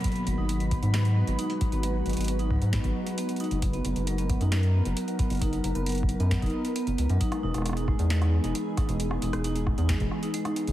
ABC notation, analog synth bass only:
X:1
M:4/4
L:1/16
Q:1/4=134
K:G#m
V:1 name="Analog synth bass" clef=bass
z2 G,,, G,,,4 G,,4 G,,, z3 G,,,- | G,,,2 G,,, G,,,4 G,,2 G,,, z4 z F,,,- | F,,,2 F,,, F,,,4 F,,4 F,,, z3 F,,,- | F,,,2 F,,, F,,,4 F,,2 F,,, z3 F,,, C,, F,, |
z2 E,,, E,,,4 E,,4 E,,, z3 E,,,- | E,,,2 E,,, E,,,4 E,,2 E,,, z4 z F,,, |]